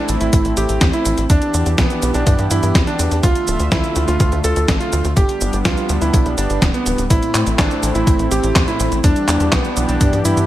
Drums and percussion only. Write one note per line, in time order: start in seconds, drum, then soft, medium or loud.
0.09 closed hi-hat medium
0.09 cabasa medium
0.21 closed hi-hat soft
0.21 cabasa soft
0.33 kick loud
0.33 closed hi-hat medium
0.33 cabasa soft
0.45 closed hi-hat soft
0.45 cabasa soft
0.57 closed hi-hat medium
0.57 cabasa medium
0.69 closed hi-hat soft
0.69 cabasa soft
0.81 kick loud
0.81 snare loud
0.81 closed hi-hat medium
0.81 cabasa soft
0.93 closed hi-hat soft
0.93 cabasa soft
1.05 closed hi-hat medium
1.05 cabasa medium
1.18 closed hi-hat soft
1.18 cabasa soft
1.30 kick loud
1.30 closed hi-hat medium
1.30 cabasa soft
1.42 closed hi-hat soft
1.42 cabasa soft
1.54 closed hi-hat soft
1.54 cabasa medium
1.66 closed hi-hat soft
1.66 cabasa soft
1.78 kick loud
1.78 snare loud
1.78 closed hi-hat medium
1.78 cabasa soft
1.90 closed hi-hat soft
1.90 cabasa soft
2.02 closed hi-hat medium
2.02 cabasa medium
2.14 closed hi-hat soft
2.14 cabasa soft
2.27 kick loud
2.27 closed hi-hat medium
2.27 cabasa soft
2.39 closed hi-hat soft
2.39 cabasa soft
2.51 closed hi-hat medium
2.51 cabasa medium
2.63 closed hi-hat soft
2.63 cabasa soft
2.75 kick loud
2.75 snare loud
2.75 closed hi-hat medium
2.75 cabasa soft
2.87 closed hi-hat soft
2.87 cabasa soft
2.99 closed hi-hat medium
2.99 cabasa medium
3.11 closed hi-hat soft
3.11 cabasa soft
3.23 kick loud
3.23 closed hi-hat medium
3.23 cabasa soft
3.35 closed hi-hat soft
3.35 cabasa soft
3.48 closed hi-hat soft
3.48 cabasa medium
3.60 closed hi-hat soft
3.60 cabasa soft
3.72 kick loud
3.72 snare loud
3.72 closed hi-hat medium
3.72 cabasa soft
3.84 closed hi-hat soft
3.84 cabasa soft
3.96 closed hi-hat medium
3.96 cabasa medium
4.08 closed hi-hat soft
4.08 cabasa soft
4.20 kick loud
4.20 closed hi-hat medium
4.20 cabasa soft
4.32 closed hi-hat soft
4.32 cabasa soft
4.44 closed hi-hat medium
4.44 cabasa medium
4.56 closed hi-hat soft
4.56 cabasa soft
4.68 kick loud
4.68 snare loud
4.68 closed hi-hat medium
4.68 cabasa soft
4.81 closed hi-hat soft
4.81 cabasa soft
4.93 closed hi-hat medium
4.93 cabasa medium
5.05 closed hi-hat soft
5.05 cabasa soft
5.17 kick loud
5.17 closed hi-hat medium
5.17 cabasa soft
5.29 closed hi-hat soft
5.29 cabasa soft
5.41 closed hi-hat soft
5.41 cabasa medium
5.53 closed hi-hat soft
5.53 cabasa soft
5.65 kick loud
5.65 snare loud
5.65 closed hi-hat medium
5.65 cabasa soft
5.77 closed hi-hat soft
5.77 cabasa soft
5.89 closed hi-hat medium
5.89 cabasa medium
6.02 closed hi-hat soft
6.02 cabasa soft
6.14 kick loud
6.14 closed hi-hat medium
6.14 cabasa soft
6.26 closed hi-hat soft
6.26 cabasa soft
6.38 closed hi-hat medium
6.38 cabasa medium
6.50 closed hi-hat soft
6.50 cabasa soft
6.62 kick loud
6.62 snare loud
6.62 closed hi-hat medium
6.62 cabasa soft
6.74 closed hi-hat soft
6.74 cabasa soft
6.86 closed hi-hat medium
6.86 cabasa medium
6.98 closed hi-hat soft
6.98 cabasa soft
7.10 kick loud
7.10 closed hi-hat medium
7.10 cabasa soft
7.23 closed hi-hat soft
7.23 cabasa soft
7.35 clap medium
7.35 closed hi-hat soft
7.35 cabasa medium
7.47 closed hi-hat soft
7.47 cabasa soft
7.59 kick loud
7.59 snare loud
7.59 clap medium
7.59 closed hi-hat medium
7.59 cabasa soft
7.71 closed hi-hat soft
7.71 cabasa soft
7.83 closed hi-hat medium
7.83 cabasa medium
7.95 closed hi-hat soft
7.95 cabasa soft
8.07 kick loud
8.07 closed hi-hat medium
8.07 cabasa soft
8.19 closed hi-hat soft
8.19 cabasa soft
8.31 closed hi-hat medium
8.31 cabasa medium
8.44 closed hi-hat soft
8.44 cabasa soft
8.55 kick loud
8.55 snare loud
8.55 clap medium
8.55 closed hi-hat medium
8.55 cabasa soft
8.68 closed hi-hat soft
8.68 cabasa soft
8.80 closed hi-hat medium
8.80 cabasa medium
8.92 closed hi-hat soft
8.92 cabasa soft
9.04 kick loud
9.04 closed hi-hat medium
9.04 cabasa soft
9.16 closed hi-hat soft
9.16 cabasa soft
9.28 clap medium
9.28 closed hi-hat soft
9.28 cabasa medium
9.40 closed hi-hat soft
9.40 cabasa soft
9.52 kick loud
9.52 snare loud
9.52 clap medium
9.52 closed hi-hat medium
9.52 cabasa soft
9.65 closed hi-hat soft
9.65 cabasa soft
9.77 closed hi-hat medium
9.77 cabasa medium
9.89 closed hi-hat soft
9.89 cabasa soft
10.01 kick loud
10.01 closed hi-hat medium
10.01 cabasa soft
10.13 closed hi-hat soft
10.13 cabasa soft
10.25 closed hi-hat medium
10.25 cabasa medium
10.37 closed hi-hat soft
10.37 cabasa soft